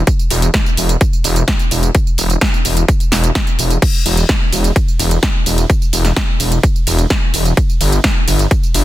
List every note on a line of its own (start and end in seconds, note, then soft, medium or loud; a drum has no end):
0.07 kick loud
0.07 closed hi-hat medium
0.07 tambourine soft
0.19 tambourine soft
0.30 0.50 E1 loud
0.30 open hi-hat loud
0.30 tambourine medium
0.42 closed hi-hat medium
0.42 tambourine soft
0.54 kick loud
0.54 snare loud
0.54 closed hi-hat medium
0.54 tambourine soft
0.66 tambourine soft
0.77 0.96 E1 medium
0.77 open hi-hat loud
0.77 tambourine medium
0.89 closed hi-hat medium
0.89 tambourine soft
1.01 kick loud
1.01 closed hi-hat medium
1.01 tambourine soft
1.13 tambourine soft
1.24 1.43 E1 loud
1.24 open hi-hat loud
1.24 tambourine medium
1.36 closed hi-hat medium
1.36 tambourine soft
1.48 kick loud
1.48 snare loud
1.48 closed hi-hat medium
1.48 tambourine soft
1.59 closed hi-hat soft
1.59 tambourine soft
1.71 1.90 E1 medium
1.71 open hi-hat loud
1.71 tambourine medium
1.83 closed hi-hat medium
1.83 tambourine soft
1.95 kick loud
1.95 closed hi-hat medium
1.95 tambourine soft
2.07 tambourine soft
2.18 2.37 E1 loud
2.18 open hi-hat loud
2.18 tambourine medium
2.30 closed hi-hat medium
2.30 tambourine soft
2.41 kick loud
2.41 snare loud
2.41 closed hi-hat medium
2.41 tambourine soft
2.54 tambourine soft
2.65 2.84 E1 medium
2.65 open hi-hat loud
2.65 tambourine medium
2.77 closed hi-hat medium
2.77 tambourine soft
2.88 kick loud
2.88 closed hi-hat medium
2.88 tambourine soft
3.00 closed hi-hat soft
3.00 tambourine soft
3.12 3.31 E1 medium
3.12 snare medium
3.12 open hi-hat loud
3.12 tambourine medium
3.24 closed hi-hat medium
3.24 tambourine soft
3.35 kick loud
3.35 snare loud
3.35 closed hi-hat medium
3.35 tambourine soft
3.47 closed hi-hat soft
3.47 tambourine soft
3.59 3.78 E1 medium
3.59 open hi-hat loud
3.59 tambourine medium
3.70 closed hi-hat medium
3.70 tambourine soft
3.82 kick loud
3.82 closed hi-hat medium
3.82 crash loud
3.82 ride medium
3.82 tambourine soft
3.95 tambourine soft
4.06 4.25 E1 medium
4.06 open hi-hat loud
4.06 ride medium
4.06 tambourine medium
4.17 closed hi-hat medium
4.17 tambourine soft
4.29 kick loud
4.29 snare loud
4.29 closed hi-hat medium
4.29 tambourine soft
4.53 4.71 E1 medium
4.53 open hi-hat loud
4.53 ride medium
4.53 tambourine medium
4.64 closed hi-hat medium
4.64 tambourine soft
4.76 kick loud
4.76 closed hi-hat medium
4.76 ride medium
4.76 tambourine soft
4.88 tambourine soft
4.99 5.18 E1 loud
4.99 open hi-hat loud
4.99 ride medium
4.99 tambourine medium
5.11 closed hi-hat medium
5.11 tambourine soft
5.23 kick loud
5.23 snare loud
5.23 closed hi-hat medium
5.23 tambourine soft
5.46 5.65 E1 medium
5.46 open hi-hat loud
5.46 ride medium
5.46 tambourine medium
5.58 closed hi-hat medium
5.58 tambourine soft
5.70 kick loud
5.70 closed hi-hat medium
5.70 ride medium
5.70 tambourine soft
5.82 tambourine soft
5.93 6.12 E1 loud
5.93 open hi-hat loud
5.93 ride medium
5.93 tambourine medium
6.05 snare soft
6.05 closed hi-hat medium
6.05 tambourine soft
6.16 kick loud
6.16 snare loud
6.16 closed hi-hat medium
6.16 tambourine soft
6.40 6.59 E1 medium
6.40 open hi-hat loud
6.40 ride medium
6.40 tambourine medium
6.52 closed hi-hat medium
6.52 tambourine soft
6.63 kick loud
6.63 closed hi-hat medium
6.63 ride medium
6.63 tambourine soft
6.76 tambourine soft
6.87 7.06 E1 medium
6.87 open hi-hat loud
6.87 ride medium
6.87 tambourine medium
6.99 closed hi-hat medium
6.99 tambourine soft
7.10 kick loud
7.10 snare loud
7.10 closed hi-hat medium
7.10 tambourine soft
7.34 7.53 E1 medium
7.34 open hi-hat loud
7.34 ride medium
7.34 tambourine medium
7.45 closed hi-hat medium
7.45 tambourine soft
7.57 kick loud
7.57 closed hi-hat medium
7.57 ride medium
7.57 tambourine soft
7.70 tambourine soft
7.81 8.00 G1 loud
7.81 open hi-hat loud
7.81 ride medium
7.81 tambourine medium
7.92 closed hi-hat medium
7.92 tambourine soft
8.04 kick loud
8.04 snare loud
8.04 closed hi-hat medium
8.04 ride medium
8.04 tambourine soft
8.28 8.46 G1 medium
8.28 open hi-hat loud
8.28 ride medium
8.28 tambourine medium
8.39 closed hi-hat medium
8.39 tambourine soft
8.51 kick loud
8.51 closed hi-hat medium
8.51 ride medium
8.51 tambourine soft
8.63 tambourine soft
8.74 8.84 G1 loud
8.74 open hi-hat loud
8.74 ride medium
8.74 tambourine medium